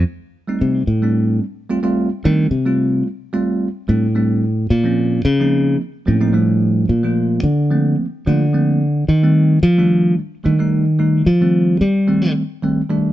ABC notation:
X:1
M:4/4
L:1/16
Q:"Swing 16ths" 1/4=110
K:Fmix
V:1 name="Tine electric piano"
z3 [G,A,CE]2 z2 [G,A,CD]3 z2 [G,A,CF] [G,A,CF]2 z | [G,A,CD]2 z [G,A,CF]3 z2 [G,A,CF]2 z2 [G,A,CD] z [G,A,CD]2 | z3 [F,B,C_D]2 z2 [F,B,CE]3 z2 [F,B,CD] [F,B,CE] [F,G,A,=D]2- | [F,G,A,D]2 z [F,A,B,F]3 z2 [F,A,B,C]2 z2 [F,A,B,F] z [F,A,B,C]2 |
z3 [E,G,A,C]2 z2 [E,G,A,D]3 z2 [E,G,A,D] [E,G,A,E]2 z | [E,G,A,E]2 z [E,G,A,C]3 z2 [E,G,A,C]2 z2 [E,G,A,C] z [E,G,A,D]2 |]
V:2 name="Fingered electric bass" clef=bass
z4 C,2 A,,4 z6 | E,2 C,4 z6 A,,4- | A,,2 B,,4 _D,4 z2 A,,4- | A,,2 B,,4 D,4 z2 D,4- |
D,2 E,4 F,4 z2 E,4- | E,2 F,4 G,4 z6 |]